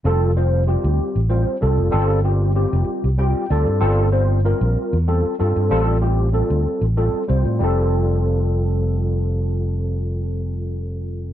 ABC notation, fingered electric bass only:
X:1
M:6/8
L:1/16
Q:3/8=64
K:F
V:1 name="Fingered electric bass" clef=bass
F,,,4- F,,, D,, z A,,,2 z C,, F,,, | G,,,4- G,,, F,,, z C,,2 z D,, G,, | G,,,4- G,,, B,,, z E,,2 z G,, G,, | A,,,4- A,,, D,, z A,,,2 z C,, A,, |
F,,,12- | F,,,12 |]